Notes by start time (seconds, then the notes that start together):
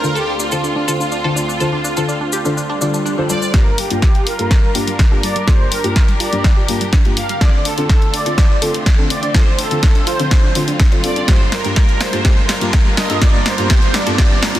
Already playing: D2 D3 C4 F4 A#4
0.03 D3 D4 F4 A4 C5, cabasa
0.15 G4 A4, cabasa
0.28 D4
0.40 D4 F4, cabasa
0.52 D3 D4 F4 A4 C5, cabasa
0.64 D4, cabasa
0.76 D4
0.88 D3 D4 F4 A4 C5, cabasa
1.00 D4, cabasa
1.12 D4, cabasa
1.24 D3 D4 F4 A4 C5
1.36 D4, cabasa
1.48 D4, cabasa
1.60 D3 D4 F4 A4 C5, cabasa
1.73 D4
1.85 D4, cabasa
1.97 D3 D4 F4 A4 C5, cabasa
2.09 D4, cabasa
2.21 D4
2.32 G4, cabasa
2.45 D3 D4 F4 A4 C5, cabasa
2.57 D4, swell, cabasa
2.70 D4
2.81 D3 D4 F4 A4 D5, cabasa
2.94 D4, cabasa
3.06 D4, cabasa
3.18 D3 D4 F4 A4 C5
3.29 G3 D4 F4 A4 C5 D5, cabasa
3.42 D4, cabasa
3.54 G2 G3 D4 F4 G4 A#4, kick, snare, closed hi-hat, riser
3.66 G3
3.78 G1 G3 G4, open hi-hat
3.90 G1 G2 G3 A#3 D4 F4 G4, closed hi-hat
4.02 G4, kick, snare, closed hi-hat
4.15 G3, closed hi-hat
4.26 G1 G3 A#4, open hi-hat
4.39 G1 G2 A#3 D4 F4 G4 A4, closed hi-hat
4.51 G3, kick, snare, closed hi-hat
4.63 G3
4.75 G1 G2 A#3 D4 F4 G4, open hi-hat
4.87 G1 G3, closed hi-hat
4.99 G3, kick, snare, closed hi-hat
5.11 G2 A#3 D4 F4 G4 A4
5.23 G1 G3 D5, open hi-hat
5.36 G1 G3, closed hi-hat
5.47 G2 A#3 D4 F4 G4 A4 C5, kick, snare, closed hi-hat
5.60 G1 G3
5.72 G1 G3 A#4, open hi-hat
5.84 G1 G2 A#3 D4 F4 G4, closed hi-hat
5.96 G3 A#4, kick, snare, closed hi-hat
6.08 G3, closed hi-hat
6.20 G1 F4 D5, open hi-hat
6.32 G1 G2 G3 A#3 D4 F4 G4, closed hi-hat
6.44 G3, kick, snare, closed hi-hat
6.57 G4
6.68 G1 G2 G3 A#3 D4 F4 G4, open hi-hat
6.81 G1 G3, closed hi-hat
6.93 D4, kick, snare, closed hi-hat
7.05 G2 G3 A#3 D4 F4 G4, closed hi-hat
7.17 G1 G3 F5, open hi-hat
7.29 G1 G3, closed hi-hat
7.41 D3 A3 C4 D4 F4 A4 D5, kick, snare, closed hi-hat
7.53 D4
7.65 D2 D4 A4, open hi-hat
7.78 D2 D3 C4 D4 F4 A4, closed hi-hat
7.89 A4, kick, snare, closed hi-hat
8.02 C2 D4, closed hi-hat
8.14 D2 D4 D5, open hi-hat
8.26 D2 D3 C4 D4 F4 A4, closed hi-hat
8.38 D4, kick, snare, closed hi-hat
8.50 D2 D4
8.62 D2 D3 C4 D4 F4 A4, open hi-hat
8.74 D2 D4, closed hi-hat
8.86 D4, kick, snare, closed hi-hat
8.98 D3 C4 D4 F4 A4
9.10 D2 D4 D5, open hi-hat
9.23 D2 D4, closed hi-hat
9.34 D3 C4 D4 F4 A4 C5, kick, snare, closed hi-hat
9.47 D2 D4
9.59 D2 D4 A4, open hi-hat
9.71 D2 D3 C4 D4 F4 A4, closed hi-hat
9.83 D4 A4, kick, snare, closed hi-hat
9.95 C2 D4, closed hi-hat
10.07 D2 F4 C5, open hi-hat
10.19 D2 D3 C4 D4 F4 A4, closed hi-hat
10.31 D4, kick, snare, closed hi-hat
10.43 D2 D4
10.55 D3 C4 D4 F4 C5, open hi-hat
10.68 D2 D4, closed hi-hat
10.79 D4, kick, snare, closed hi-hat
10.92 D3 C4 D4 F4 A4, closed hi-hat
11.04 D2 C4 D4 F4 A4 D5, open hi-hat
11.16 D2 D4, closed hi-hat
11.28 G2 G3 A#3 D4 G4 A#4 C5, kick, snare, closed hi-hat
11.40 G3
11.52 G1 G3 A#4, snare, open hi-hat
11.64 G2 G3 A#3 D4 F4 G4, closed hi-hat
11.76 G4 A#4, kick, snare, closed hi-hat
11.89 G3, closed hi-hat
12.00 G1 G3 C5, snare, open hi-hat
12.13 G2 A#3 D4 F4 G4 A4, closed hi-hat
12.25 G4, kick, snare, closed hi-hat
12.37 G3
12.49 G1 G3, snare, open hi-hat
12.61 G1 G2 G3 A#3 D4 F4 G4, closed hi-hat
12.73 G4, kick, snare, closed hi-hat
12.86 G3
12.97 G1 G3 D#5, snare, open hi-hat
13.10 G2 A#3 D4 F4 G4 A4, closed hi-hat
13.21 G4 D5, kick, snare, closed hi-hat
13.34 G3
13.46 G3 C5, snare, open hi-hat
13.58 G2 G3 A#3 D4 F4 G4, closed hi-hat
13.70 G4 C5, kick, snare, closed hi-hat
13.82 G3, closed hi-hat
13.94 G1 G3 D5, snare, open hi-hat
14.06 G2 A#3 D4 F4 G4 A4, closed hi-hat
14.18 G2 G4, kick, snare, closed hi-hat
14.31 G3
14.42 G1 G3, snare, open hi-hat
14.55 G2 G3 A#3 D4 F4 G4, closed hi-hat